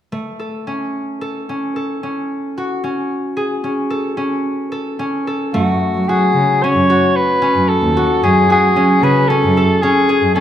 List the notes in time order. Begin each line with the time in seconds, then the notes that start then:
0.12 A3
0.39 A4
0.67 C#4
1.21 A4
1.49 C#4
1.76 A4
2.03 C#4
2.58 F#4
2.84 C#4
3.37 G#4
3.64 C#4
3.90 A4
4.17 C#4
4.72 A4
4.99 C#4
5.27 A4
5.54 F#2 A3 F#4
5.94 F#3
6.07 F#3 F#4 G#4
6.33 C#3
6.63 C#4 C#5
6.73 F#2
6.90 F#4
7.16 B4
7.42 C#4
7.55 F#2
7.69 A4
7.81 D#2
7.97 F#4
8.22 F#2 C#4 G#4
8.50 F#4 G#4
8.62 F#3
8.75 F#3 C#4
9.01 C#3 G#4 B4
9.28 C#4 A4
9.43 F#2
9.57 A4
9.82 C#4 G#4
10.09 G#4
10.21 F#2
10.35 C#4 A4